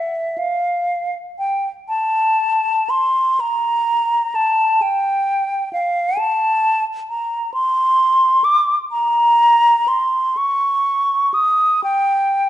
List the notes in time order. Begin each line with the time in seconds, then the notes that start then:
Already playing: E5
0.38 F5
1.39 G5
1.89 A5
2.90 C6
3.40 A#5
4.35 A5
4.82 G5
5.73 F5
6.18 A5
7.10 A#5
7.54 C6
8.44 D6
8.92 A#5
9.88 C6
10.37 C#6
11.34 D#6
11.84 G5